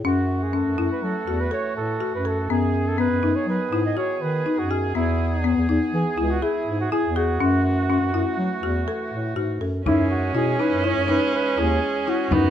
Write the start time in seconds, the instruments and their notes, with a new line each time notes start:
0.05 bass clarinet F#2, woodwind section E3 A3 F#4, marimba C#4, flugelhorn F#4
0.43 flugelhorn G#4
0.53 marimba C#4, flugelhorn A4
0.66 bass clarinet F#2
0.78 bass clarinet F#2, marimba E4
0.92 flugelhorn B4
1.03 bass clarinet F#3, flugelhorn A4
1.27 bass clarinet E2, marimba F#4
1.41 flugelhorn B4
1.51 marimba A4, flugelhorn C#5
1.76 bass clarinet A2, flugelhorn A4
2.00 marimba F#4
2.14 bass clarinet F#2, flugelhorn B4
2.25 marimba A4, flugelhorn A4
2.49 bass clarinet F#2, woodwind section D#3 B3 G#4, marimba B3, flugelhorn G#4
2.88 flugelhorn A4
2.98 marimba B3, flugelhorn B4
3.11 bass clarinet F#2
3.23 bass clarinet F#2, marimba D#4
3.36 flugelhorn C#5
3.47 bass clarinet F#3, flugelhorn B4
3.72 bass clarinet G#2, marimba E4
3.86 flugelhorn D#5
3.97 marimba F#4, flugelhorn C#5
4.22 bass clarinet D#3, flugelhorn B4
4.46 marimba D#4
4.58 bass clarinet F#2, flugelhorn F#4
4.71 marimba F#4, flugelhorn G#4
4.95 bass clarinet E2, woodwind section E3, marimba B3, flugelhorn E4
5.44 marimba B3
5.57 bass clarinet E2
5.69 bass clarinet E2, marimba D#4
5.93 bass clarinet E3, flugelhorn G#4
6.18 bass clarinet C#2, marimba E4
6.31 flugelhorn F#4
6.42 flugelhorn E4, marimba G#4
6.67 bass clarinet G#2
6.80 flugelhorn F#4
6.92 marimba E4, flugelhorn G#4
7.03 bass clarinet E2
7.16 flugelhorn F#4, marimba G#4
7.40 bass clarinet F#2, woodwind section A3 F#4, marimba C#4
7.90 marimba C#4
8.01 bass clarinet F#2
8.13 bass clarinet F#2, marimba E4
8.38 bass clarinet F#3
8.63 bass clarinet E2, marimba F#4
8.88 marimba A4
9.12 bass clarinet A2
9.36 bass clarinet G#2, marimba F#4
9.61 bass clarinet F#2, marimba A4
9.85 bass clarinet F#2, woodwind section E3 G#3 G#4, viola C#4, marimba D#4, flugelhorn E4, frame drum
10.11 flugelhorn F#4
10.34 bass clarinet B2, marimba E4, flugelhorn G#4, frame drum
10.60 marimba D#4, flugelhorn B4
10.71 bass clarinet F#2
10.84 marimba E4, flugelhorn C#5
10.96 bass clarinet F#2
11.08 marimba D#4, flugelhorn B4, frame drum
11.35 flugelhorn B4
11.57 bass clarinet D#2, marimba E4, flugelhorn G#4
12.07 marimba E4, flugelhorn F#4
12.31 bass clarinet F#2, woodwind section B2 A3 D#4, viola B3, marimba D#4, frame drum